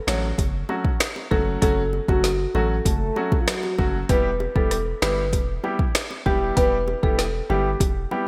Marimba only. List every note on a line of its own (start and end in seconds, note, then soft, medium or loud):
0.08 0.21 C#5 medium
1.31 1.45 A4 medium
1.62 1.90 A4 loud
2.09 2.22 F#4 medium
2.55 2.69 A4 medium
4.09 4.37 B4 loud
4.56 4.70 A4 medium
5.02 5.16 B4 medium
6.26 6.40 G4 medium
6.57 6.84 B4 loud
7.03 7.17 A4 medium
7.50 7.64 G4 medium